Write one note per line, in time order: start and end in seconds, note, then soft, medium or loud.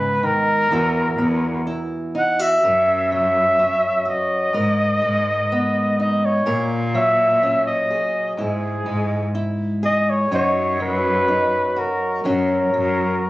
0.00 0.28 G#2 medium
0.00 0.66 G#2 medium
0.00 0.23 C#3 medium
0.00 0.66 G#3 medium
0.00 0.71 B3 medium
0.00 0.72 D#4 medium
0.00 0.67 G#4 medium
0.00 0.26 B4 medium
0.23 0.71 D#3 medium
0.23 1.89 A#4 loud
0.70 1.08 E2 medium
0.70 2.57 E3 medium
0.70 1.17 B3 medium
0.70 1.66 E4 medium
0.70 2.14 F#4 medium
1.18 1.56 E2 medium
1.18 2.57 B3 medium
1.67 2.57 E4 medium
2.15 2.39 D#4 medium
2.15 2.43 F#5 loud
2.39 2.63 F#4 medium
2.39 3.12 E5 loud
2.63 4.12 F#2 loud
2.63 4.53 F#2 medium
2.63 4.49 A#4 medium
3.12 4.55 F#3 medium
3.12 4.10 E5 loud
3.59 4.49 C#4 medium
4.05 4.48 F#4 medium
4.05 6.00 D#5 loud
4.53 6.40 G#2 medium
4.53 4.92 G#2 medium
4.53 6.41 A#4 medium
5.02 5.40 G#2 loud
5.02 6.40 G#3 medium
5.52 6.47 B3 medium
6.00 6.47 D#4 medium
6.00 6.27 D#5 medium
6.26 6.69 C#5 medium
6.46 8.32 A#2 medium
6.46 7.95 A#2 loud
6.46 8.33 A#4 medium
6.94 8.38 F#3 medium
6.94 7.63 E5 loud
7.43 8.33 C#4 medium
7.67 8.35 D#5 loud
7.90 8.33 G#4 medium
7.90 8.83 G#4 medium
8.37 10.25 G#2 medium
8.37 8.76 G#2 medium
8.37 9.34 E4 medium
8.42 9.32 G#4 medium
8.86 9.24 G#2 loud
8.86 10.25 G#3 medium
9.35 10.25 E4 medium
9.83 10.25 G#4 medium
9.83 10.12 D#5 loud
10.10 10.33 C#5 medium
10.30 11.82 F#2 loud
10.30 12.23 F#2 medium
10.30 10.79 F#3 medium
10.30 11.27 D#4 medium
10.30 11.75 F#4 medium
10.30 10.78 C#5 loud
10.80 12.24 F#3 medium
10.80 11.81 B4 loud
11.28 12.19 D#4 medium
11.28 12.43 D#4 soft
11.76 12.19 F#4 medium
11.76 12.26 A#4 medium
12.24 13.30 F#2 medium
12.24 12.64 F#2 medium
12.24 12.72 F#3 medium
12.24 13.30 C#4 medium
12.24 13.30 F#4 medium
12.28 13.30 A#4 medium
12.74 13.12 F#2 loud
12.74 13.30 F#3 medium